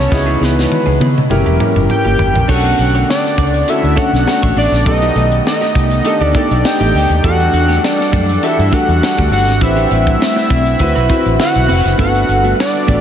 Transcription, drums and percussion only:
0.12 kick loud
0.12 snare medium
0.43 snare medium
0.59 snare medium
0.72 high tom medium
1.01 high tom medium
1.18 mid tom medium
1.31 mid tom medium
1.60 mid tom medium
1.76 mid tom medium
1.90 mid tom medium
2.19 floor tom medium
2.35 floor tom loud
2.49 kick loud
2.49 crash medium
2.65 closed hi-hat medium
2.79 closed hi-hat medium
2.95 closed hi-hat medium
3.10 snare loud
3.25 snare soft
3.25 closed hi-hat soft
3.38 kick loud
3.38 closed hi-hat medium
3.54 closed hi-hat medium
3.68 closed hi-hat medium
3.84 closed hi-hat soft
3.97 kick medium
3.97 closed hi-hat medium
4.14 snare soft
4.14 closed hi-hat soft
4.28 snare loud
4.43 kick medium
4.43 closed hi-hat medium
4.57 open hi-hat medium
4.73 snare soft
4.73 closed hi-hat medium
4.86 kick loud
4.86 closed hi-hat medium
5.02 closed hi-hat medium
5.16 closed hi-hat medium
5.32 closed hi-hat medium
5.47 snare loud
5.62 snare soft
5.62 closed hi-hat soft
5.75 kick loud
5.75 closed hi-hat medium
5.91 closed hi-hat medium
6.05 closed hi-hat loud
6.21 closed hi-hat soft
6.35 kick loud
6.35 closed hi-hat medium
6.51 closed hi-hat soft
6.65 snare loud
6.81 closed hi-hat medium
6.95 open hi-hat medium
7.11 closed hi-hat medium
7.24 kick loud
7.24 closed hi-hat medium
7.40 closed hi-hat medium
7.54 closed hi-hat medium
7.70 snare soft
7.70 closed hi-hat medium
7.84 snare loud
8.00 snare soft
8.00 closed hi-hat soft
8.13 kick loud
8.13 closed hi-hat medium
8.29 closed hi-hat medium
8.43 closed hi-hat medium
8.60 closed hi-hat soft
8.73 kick medium
8.73 closed hi-hat medium
8.89 closed hi-hat soft
9.03 snare loud
9.18 kick medium
9.18 closed hi-hat medium
9.32 open hi-hat medium
9.48 snare soft
9.48 closed hi-hat medium
9.61 kick loud
9.61 closed hi-hat medium
9.77 closed hi-hat soft
9.91 closed hi-hat medium
10.07 kick medium
10.07 closed hi-hat medium
10.22 snare loud
10.37 snare soft
10.37 closed hi-hat soft
10.50 kick loud
10.50 closed hi-hat medium
10.66 closed hi-hat medium
10.79 kick medium
10.79 closed hi-hat medium
10.96 closed hi-hat soft
11.09 kick loud
11.09 closed hi-hat medium
11.26 closed hi-hat soft
11.40 snare loud
11.55 closed hi-hat medium
11.69 open hi-hat medium
11.86 snare soft
11.86 closed hi-hat medium
11.99 kick loud
11.99 closed hi-hat medium
12.15 closed hi-hat medium
12.29 closed hi-hat medium
12.45 closed hi-hat medium
12.60 snare loud
12.75 closed hi-hat soft
12.88 kick loud
12.88 closed hi-hat medium

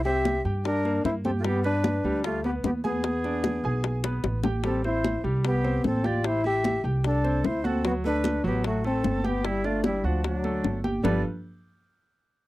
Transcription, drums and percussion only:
0.05 high bongo soft
0.05 high conga soft
0.25 high bongo medium
0.25 high conga medium
0.45 high conga soft
0.65 high bongo medium
0.65 high conga soft
0.85 high bongo soft
0.85 high conga soft
1.05 high bongo soft
1.05 low bongo medium
1.05 high conga soft
1.25 high bongo soft
1.25 high conga medium
1.44 high bongo medium
1.44 high conga soft
1.64 high bongo soft
1.64 high conga soft
1.84 high bongo medium
1.84 high conga medium
2.05 high conga soft
2.24 high bongo medium
2.24 high conga soft
2.44 high bongo soft
2.44 high conga soft
2.64 high bongo soft
2.64 low bongo medium
2.64 high conga medium
2.84 high bongo soft
2.84 high conga medium
3.04 high bongo medium
3.04 high conga soft
3.24 high bongo soft
3.24 high conga soft
3.44 high bongo medium
3.44 high conga medium
3.64 high conga soft
3.84 high bongo medium
3.84 high conga soft
4.04 high bongo medium
4.04 high conga soft
4.24 high bongo medium
4.24 high conga soft
4.44 low bongo medium
4.44 high conga medium
4.64 high bongo medium
4.64 high conga soft
4.84 high bongo soft
4.84 high conga soft
5.04 high bongo medium
5.04 high conga medium
5.25 high conga soft
5.44 high bongo medium
5.44 high conga soft
5.65 high bongo soft
5.65 high conga soft
5.84 high bongo soft
5.84 low bongo medium
5.84 high conga medium
6.04 high bongo soft
6.04 high conga medium
6.24 high bongo medium
6.24 high conga soft
6.44 high bongo soft
6.44 high conga soft
6.64 high bongo medium
6.64 high conga medium
6.85 high conga soft
7.04 high bongo medium
7.04 high conga soft
7.24 high bongo soft
7.24 high conga soft
7.44 high bongo soft
7.44 low bongo medium
7.44 high conga soft
7.64 high bongo soft
7.64 high conga medium
7.85 high bongo medium
7.85 high conga soft
8.04 high bongo soft
8.04 high conga soft
8.24 high bongo medium
8.24 high conga medium
8.45 high conga soft
8.64 high bongo medium
8.64 high conga soft
8.84 high bongo soft
8.84 high conga soft
9.04 high bongo soft
9.04 low bongo medium
9.04 high conga medium
9.25 high bongo soft
9.25 high conga medium
9.45 high bongo medium
9.45 high conga soft
9.64 high bongo soft
9.64 high conga soft
9.84 high bongo medium
9.84 high conga medium
10.05 high conga soft
10.24 high bongo medium
10.24 high conga soft
10.44 high bongo soft
10.44 high conga soft
10.64 high bongo soft
10.64 low bongo medium
10.64 high conga soft
10.84 high bongo soft
10.84 high conga medium
11.04 low bongo loud
11.04 low conga medium

